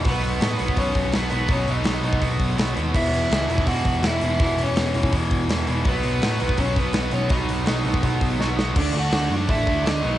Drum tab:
CC |----------------|----------------|x---------------|----------------|
HH |o-o-o-o-o-o-o-o-|o-o-o-o-o-o-o-o-|--o-o-o-o-o-o-o-|o-o-o-o-o-o-o-o-|
SD |----o-------o---|----o-------o---|----o-------o---|----o-------o---|
BD |o------oo-o-----|o------oo-o-----|o------oo-o-----|o------oo-o-----|

CC |----------------|----------------|x---------------|
HH |o-o-o-o-o-o-o-o-|o-o-o-o-o-o-----|----o---o---o---|
SD |----o-------o---|----o-------o-o-|----o-------o---|
BD |o------oo-o-----|o------oo-o-----|o-------o-o-----|